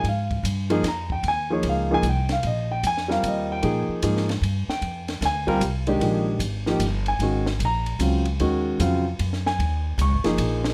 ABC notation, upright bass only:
X:1
M:3/4
L:1/8
Q:"Swing" 1/4=151
K:Eblyd
V:1 name="Upright bass" clef=bass
_A,,2 G,,2 F,,2 | E,,2 _D,,2 C,,2 | [K:Ablyd] B,,,2 F,,2 E,,2 | B,, z A,,2 G,, z |
F,,2 D,,2 C,,2 | B,,,2 A,,,2 G,,,2 | A,,,2 B,,,2 _D,,2 | E,,2 F,,2 _G,,2 |
E,,2 (3_D,, A,,, _G,,, B,,,2 |]